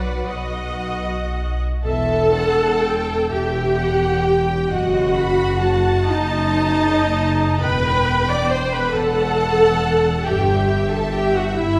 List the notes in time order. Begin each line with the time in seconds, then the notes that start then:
Already playing: B1 F#3 F#4 B4 D5 F#5
0.27 B1 F#4 D#5 F#5
1.84 E1 E2 A4 E5 A5
2.34 F#5
2.82 G5
3.32 E1 E2 G4 E5 G5
3.79 F#5
4.26 G5
4.69 F#1 F#2 F#4 D#5 F#5
5.15 B5
5.61 A5
6.09 F#1 F#2 D#4 D#5
7.61 E1 E2 B4 G5 B5
8.30 D5 D6
8.50 C5 C6
8.73 B4 B5
8.93 E1 E2 A4 F#5 A5
10.25 G1 G2 G4 E5 G5
10.91 A4 A5
11.13 G4 G5
11.36 F#4 F#5
11.57 G1 G2 E4 E5